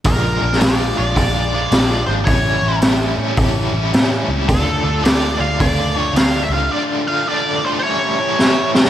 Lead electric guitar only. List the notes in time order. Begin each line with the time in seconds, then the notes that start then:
0.07 A#4
0.61 D5
0.98 D5
2.06 C5
2.25 C#5
4.49 A4
5.04 D5
5.40 F5
5.61 D5
5.99 C#5
6.18 F5
6.44 E5
6.53 F5
6.72 D5
7.08 F5
7.29 D5
7.65 C5
7.79 C5 C#5